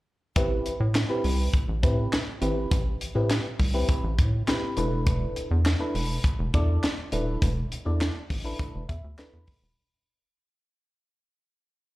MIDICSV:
0, 0, Header, 1, 4, 480
1, 0, Start_track
1, 0, Key_signature, 0, "minor"
1, 0, Tempo, 588235
1, 294, Time_signature, 4, 2, 24, 8
1, 9759, End_track
2, 0, Start_track
2, 0, Title_t, "FM electric piano"
2, 0, Program_c, 0, 5
2, 293, Note_on_c, 0, 60, 94
2, 295, Note_on_c, 0, 64, 90
2, 296, Note_on_c, 0, 67, 94
2, 298, Note_on_c, 0, 71, 100
2, 599, Note_off_c, 0, 60, 0
2, 600, Note_off_c, 0, 64, 0
2, 601, Note_off_c, 0, 67, 0
2, 602, Note_off_c, 0, 71, 0
2, 890, Note_on_c, 0, 60, 88
2, 892, Note_on_c, 0, 64, 77
2, 895, Note_on_c, 0, 67, 77
2, 897, Note_on_c, 0, 71, 90
2, 1197, Note_off_c, 0, 60, 0
2, 1198, Note_off_c, 0, 64, 0
2, 1200, Note_off_c, 0, 67, 0
2, 1201, Note_off_c, 0, 71, 0
2, 1491, Note_on_c, 0, 60, 86
2, 1493, Note_on_c, 0, 64, 72
2, 1494, Note_on_c, 0, 67, 76
2, 1496, Note_on_c, 0, 71, 98
2, 1737, Note_off_c, 0, 60, 0
2, 1738, Note_off_c, 0, 64, 0
2, 1739, Note_off_c, 0, 67, 0
2, 1740, Note_off_c, 0, 71, 0
2, 1969, Note_on_c, 0, 60, 89
2, 1972, Note_on_c, 0, 64, 80
2, 1973, Note_on_c, 0, 67, 73
2, 1976, Note_on_c, 0, 71, 88
2, 2277, Note_off_c, 0, 60, 0
2, 2279, Note_off_c, 0, 64, 0
2, 2279, Note_off_c, 0, 67, 0
2, 2280, Note_off_c, 0, 71, 0
2, 2569, Note_on_c, 0, 60, 83
2, 2573, Note_on_c, 0, 64, 75
2, 2573, Note_on_c, 0, 67, 78
2, 2576, Note_on_c, 0, 71, 86
2, 2816, Note_off_c, 0, 60, 0
2, 2818, Note_off_c, 0, 64, 0
2, 2818, Note_off_c, 0, 67, 0
2, 2819, Note_off_c, 0, 71, 0
2, 3050, Note_on_c, 0, 60, 87
2, 3052, Note_on_c, 0, 64, 75
2, 3055, Note_on_c, 0, 67, 70
2, 3057, Note_on_c, 0, 71, 92
2, 3358, Note_off_c, 0, 60, 0
2, 3359, Note_off_c, 0, 64, 0
2, 3360, Note_off_c, 0, 67, 0
2, 3361, Note_off_c, 0, 71, 0
2, 3653, Note_on_c, 0, 60, 75
2, 3653, Note_on_c, 0, 64, 73
2, 3656, Note_on_c, 0, 67, 74
2, 3659, Note_on_c, 0, 71, 97
2, 3885, Note_off_c, 0, 64, 0
2, 3889, Note_off_c, 0, 71, 0
2, 3893, Note_on_c, 0, 62, 80
2, 3894, Note_off_c, 0, 60, 0
2, 3895, Note_off_c, 0, 67, 0
2, 3895, Note_on_c, 0, 64, 81
2, 3896, Note_on_c, 0, 69, 71
2, 3898, Note_on_c, 0, 71, 92
2, 4566, Note_off_c, 0, 62, 0
2, 4566, Note_off_c, 0, 64, 0
2, 4567, Note_off_c, 0, 69, 0
2, 4568, Note_off_c, 0, 71, 0
2, 4730, Note_on_c, 0, 62, 86
2, 4732, Note_on_c, 0, 64, 72
2, 4734, Note_on_c, 0, 69, 79
2, 4737, Note_on_c, 0, 71, 98
2, 5037, Note_off_c, 0, 62, 0
2, 5039, Note_off_c, 0, 64, 0
2, 5040, Note_off_c, 0, 69, 0
2, 5041, Note_off_c, 0, 71, 0
2, 5335, Note_on_c, 0, 62, 88
2, 5338, Note_on_c, 0, 64, 82
2, 5339, Note_on_c, 0, 69, 82
2, 5342, Note_on_c, 0, 74, 95
2, 5579, Note_off_c, 0, 62, 0
2, 5580, Note_off_c, 0, 64, 0
2, 5581, Note_off_c, 0, 69, 0
2, 5582, Note_off_c, 0, 74, 0
2, 5811, Note_on_c, 0, 62, 85
2, 5814, Note_on_c, 0, 64, 80
2, 5815, Note_on_c, 0, 69, 76
2, 5819, Note_on_c, 0, 71, 87
2, 6118, Note_off_c, 0, 62, 0
2, 6120, Note_off_c, 0, 64, 0
2, 6120, Note_off_c, 0, 69, 0
2, 6122, Note_off_c, 0, 71, 0
2, 6408, Note_on_c, 0, 62, 72
2, 6410, Note_on_c, 0, 64, 67
2, 6413, Note_on_c, 0, 69, 63
2, 6414, Note_on_c, 0, 74, 83
2, 6656, Note_off_c, 0, 62, 0
2, 6657, Note_off_c, 0, 64, 0
2, 6658, Note_off_c, 0, 69, 0
2, 6659, Note_off_c, 0, 74, 0
2, 6890, Note_on_c, 0, 62, 84
2, 6893, Note_on_c, 0, 64, 77
2, 6894, Note_on_c, 0, 69, 75
2, 6898, Note_on_c, 0, 71, 88
2, 7198, Note_off_c, 0, 62, 0
2, 7199, Note_off_c, 0, 64, 0
2, 7200, Note_off_c, 0, 69, 0
2, 7201, Note_off_c, 0, 71, 0
2, 7252, Note_on_c, 0, 76, 75
2, 7476, Note_off_c, 0, 76, 0
2, 7490, Note_on_c, 0, 62, 80
2, 7491, Note_on_c, 0, 64, 79
2, 7493, Note_on_c, 0, 83, 65
2, 7494, Note_on_c, 0, 69, 72
2, 7497, Note_on_c, 0, 71, 91
2, 7736, Note_off_c, 0, 62, 0
2, 7737, Note_off_c, 0, 64, 0
2, 7739, Note_off_c, 0, 69, 0
2, 7740, Note_off_c, 0, 71, 0
2, 7941, Note_off_c, 0, 83, 0
2, 9759, End_track
3, 0, Start_track
3, 0, Title_t, "Analog synth bass"
3, 0, Program_c, 1, 38
3, 294, Note_on_c, 1, 33, 104
3, 494, Note_off_c, 1, 33, 0
3, 655, Note_on_c, 1, 45, 107
3, 854, Note_off_c, 1, 45, 0
3, 1015, Note_on_c, 1, 36, 98
3, 1214, Note_off_c, 1, 36, 0
3, 1375, Note_on_c, 1, 33, 90
3, 1496, Note_on_c, 1, 45, 93
3, 1509, Note_off_c, 1, 33, 0
3, 1695, Note_off_c, 1, 45, 0
3, 1974, Note_on_c, 1, 32, 102
3, 2174, Note_off_c, 1, 32, 0
3, 2215, Note_on_c, 1, 33, 115
3, 2414, Note_off_c, 1, 33, 0
3, 2574, Note_on_c, 1, 45, 91
3, 2773, Note_off_c, 1, 45, 0
3, 2934, Note_on_c, 1, 36, 79
3, 3134, Note_off_c, 1, 36, 0
3, 3294, Note_on_c, 1, 33, 99
3, 3415, Note_on_c, 1, 45, 106
3, 3427, Note_off_c, 1, 33, 0
3, 3614, Note_off_c, 1, 45, 0
3, 3896, Note_on_c, 1, 28, 120
3, 4295, Note_off_c, 1, 28, 0
3, 4496, Note_on_c, 1, 40, 113
3, 4695, Note_off_c, 1, 40, 0
3, 4854, Note_on_c, 1, 28, 93
3, 5054, Note_off_c, 1, 28, 0
3, 5215, Note_on_c, 1, 28, 100
3, 5315, Note_off_c, 1, 28, 0
3, 5337, Note_on_c, 1, 40, 94
3, 5535, Note_off_c, 1, 40, 0
3, 5816, Note_on_c, 1, 27, 100
3, 6015, Note_off_c, 1, 27, 0
3, 6055, Note_on_c, 1, 28, 114
3, 6254, Note_off_c, 1, 28, 0
3, 6415, Note_on_c, 1, 40, 88
3, 6614, Note_off_c, 1, 40, 0
3, 6774, Note_on_c, 1, 33, 86
3, 6974, Note_off_c, 1, 33, 0
3, 7137, Note_on_c, 1, 28, 77
3, 7235, Note_off_c, 1, 28, 0
3, 7255, Note_on_c, 1, 40, 93
3, 7355, Note_off_c, 1, 40, 0
3, 7376, Note_on_c, 1, 38, 89
3, 7475, Note_off_c, 1, 38, 0
3, 7615, Note_on_c, 1, 40, 95
3, 7714, Note_off_c, 1, 40, 0
3, 7853, Note_on_c, 1, 27, 101
3, 7953, Note_off_c, 1, 27, 0
3, 9759, End_track
4, 0, Start_track
4, 0, Title_t, "Drums"
4, 294, Note_on_c, 9, 42, 98
4, 295, Note_on_c, 9, 36, 127
4, 375, Note_off_c, 9, 42, 0
4, 377, Note_off_c, 9, 36, 0
4, 537, Note_on_c, 9, 42, 73
4, 618, Note_off_c, 9, 42, 0
4, 772, Note_on_c, 9, 42, 87
4, 775, Note_on_c, 9, 39, 88
4, 779, Note_on_c, 9, 38, 118
4, 854, Note_off_c, 9, 42, 0
4, 857, Note_off_c, 9, 39, 0
4, 860, Note_off_c, 9, 38, 0
4, 1014, Note_on_c, 9, 46, 77
4, 1095, Note_off_c, 9, 46, 0
4, 1253, Note_on_c, 9, 36, 94
4, 1259, Note_on_c, 9, 42, 96
4, 1334, Note_off_c, 9, 36, 0
4, 1341, Note_off_c, 9, 42, 0
4, 1496, Note_on_c, 9, 36, 103
4, 1496, Note_on_c, 9, 42, 88
4, 1578, Note_off_c, 9, 36, 0
4, 1578, Note_off_c, 9, 42, 0
4, 1735, Note_on_c, 9, 42, 84
4, 1738, Note_on_c, 9, 39, 89
4, 1742, Note_on_c, 9, 38, 105
4, 1817, Note_off_c, 9, 42, 0
4, 1820, Note_off_c, 9, 39, 0
4, 1823, Note_off_c, 9, 38, 0
4, 1972, Note_on_c, 9, 42, 74
4, 2054, Note_off_c, 9, 42, 0
4, 2215, Note_on_c, 9, 36, 127
4, 2215, Note_on_c, 9, 42, 96
4, 2297, Note_off_c, 9, 36, 0
4, 2297, Note_off_c, 9, 42, 0
4, 2457, Note_on_c, 9, 42, 80
4, 2538, Note_off_c, 9, 42, 0
4, 2692, Note_on_c, 9, 42, 92
4, 2695, Note_on_c, 9, 39, 93
4, 2699, Note_on_c, 9, 38, 104
4, 2774, Note_off_c, 9, 42, 0
4, 2777, Note_off_c, 9, 39, 0
4, 2780, Note_off_c, 9, 38, 0
4, 2934, Note_on_c, 9, 36, 82
4, 2934, Note_on_c, 9, 46, 75
4, 3015, Note_off_c, 9, 36, 0
4, 3015, Note_off_c, 9, 46, 0
4, 3172, Note_on_c, 9, 36, 104
4, 3177, Note_on_c, 9, 42, 94
4, 3253, Note_off_c, 9, 36, 0
4, 3259, Note_off_c, 9, 42, 0
4, 3415, Note_on_c, 9, 36, 102
4, 3416, Note_on_c, 9, 42, 82
4, 3497, Note_off_c, 9, 36, 0
4, 3497, Note_off_c, 9, 42, 0
4, 3653, Note_on_c, 9, 42, 78
4, 3656, Note_on_c, 9, 39, 83
4, 3660, Note_on_c, 9, 38, 106
4, 3735, Note_off_c, 9, 42, 0
4, 3738, Note_off_c, 9, 39, 0
4, 3741, Note_off_c, 9, 38, 0
4, 3891, Note_on_c, 9, 42, 78
4, 3972, Note_off_c, 9, 42, 0
4, 4134, Note_on_c, 9, 36, 127
4, 4134, Note_on_c, 9, 42, 102
4, 4216, Note_off_c, 9, 36, 0
4, 4216, Note_off_c, 9, 42, 0
4, 4376, Note_on_c, 9, 42, 71
4, 4458, Note_off_c, 9, 42, 0
4, 4613, Note_on_c, 9, 42, 99
4, 4616, Note_on_c, 9, 39, 89
4, 4619, Note_on_c, 9, 38, 117
4, 4695, Note_off_c, 9, 42, 0
4, 4697, Note_off_c, 9, 39, 0
4, 4701, Note_off_c, 9, 38, 0
4, 4856, Note_on_c, 9, 46, 80
4, 4937, Note_off_c, 9, 46, 0
4, 5093, Note_on_c, 9, 36, 99
4, 5100, Note_on_c, 9, 42, 91
4, 5174, Note_off_c, 9, 36, 0
4, 5181, Note_off_c, 9, 42, 0
4, 5336, Note_on_c, 9, 36, 106
4, 5337, Note_on_c, 9, 42, 75
4, 5418, Note_off_c, 9, 36, 0
4, 5419, Note_off_c, 9, 42, 0
4, 5575, Note_on_c, 9, 42, 71
4, 5578, Note_on_c, 9, 39, 85
4, 5581, Note_on_c, 9, 38, 109
4, 5657, Note_off_c, 9, 42, 0
4, 5659, Note_off_c, 9, 39, 0
4, 5663, Note_off_c, 9, 38, 0
4, 5811, Note_on_c, 9, 42, 76
4, 5893, Note_off_c, 9, 42, 0
4, 6055, Note_on_c, 9, 36, 114
4, 6055, Note_on_c, 9, 42, 98
4, 6136, Note_off_c, 9, 36, 0
4, 6137, Note_off_c, 9, 42, 0
4, 6298, Note_on_c, 9, 42, 75
4, 6380, Note_off_c, 9, 42, 0
4, 6534, Note_on_c, 9, 42, 82
4, 6537, Note_on_c, 9, 39, 92
4, 6540, Note_on_c, 9, 38, 116
4, 6616, Note_off_c, 9, 42, 0
4, 6618, Note_off_c, 9, 39, 0
4, 6622, Note_off_c, 9, 38, 0
4, 6775, Note_on_c, 9, 36, 81
4, 6776, Note_on_c, 9, 46, 83
4, 6856, Note_off_c, 9, 36, 0
4, 6857, Note_off_c, 9, 46, 0
4, 7013, Note_on_c, 9, 36, 100
4, 7020, Note_on_c, 9, 42, 85
4, 7095, Note_off_c, 9, 36, 0
4, 7101, Note_off_c, 9, 42, 0
4, 7256, Note_on_c, 9, 36, 93
4, 7256, Note_on_c, 9, 42, 79
4, 7337, Note_off_c, 9, 36, 0
4, 7338, Note_off_c, 9, 42, 0
4, 7493, Note_on_c, 9, 42, 72
4, 7496, Note_on_c, 9, 39, 85
4, 7499, Note_on_c, 9, 38, 105
4, 7575, Note_off_c, 9, 42, 0
4, 7578, Note_off_c, 9, 39, 0
4, 7581, Note_off_c, 9, 38, 0
4, 7730, Note_on_c, 9, 46, 81
4, 7734, Note_on_c, 9, 36, 86
4, 7812, Note_off_c, 9, 46, 0
4, 7815, Note_off_c, 9, 36, 0
4, 9759, End_track
0, 0, End_of_file